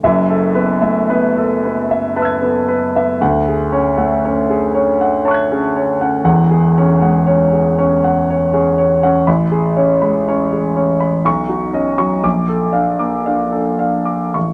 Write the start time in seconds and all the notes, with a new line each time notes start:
0.03 F#1 F#2 E5
0.30 A4
0.55 B3 B4
0.82 A3 E5
1.10 B3 B4
1.38 A4
1.65 B3 B4
1.91 E5
2.16 B4 A5 B5
2.22 E6 G#6
2.42 B3 A4
2.68 B4
2.96 B3 E5
3.21 D2 F#5
3.48 G#4
3.72 C#4 C#5
3.97 A3 F#5
4.25 C#4 C#5
4.50 G#4
4.74 C#4 C#5
5.01 F#5
5.25 C#5 A5 C#6
5.31 F#6 G#6
5.52 C#4 G#4
5.76 C#5
6.01 C#4 F#5
6.24 E1 E2 F#5
6.51 G#4
6.78 C#4 C#5
7.01 G#3 F#5
7.26 C#4 C#5
7.52 G#4
7.78 C#4 C#5
8.04 F#5
8.30 C#5
8.53 C#4 G#4
8.78 C#5
9.03 C#4 F#5
9.27 A1 B5
9.52 G#4
9.77 C#4 C#5
10.02 G#3 B5
10.29 C#4 C#5
10.53 G#4
10.76 C#4 C#5
11.00 B5
11.25 B1 C#6
11.49 D#4 F#4
11.73 C#4 D#5
11.98 F#3 C#6
12.23 A#1 D6
12.49 A4
12.73 D4 F5
12.99 A#3 D6
13.26 D4 F5
13.52 A4
13.79 D4 F5
14.05 D6
14.34 A1 C#6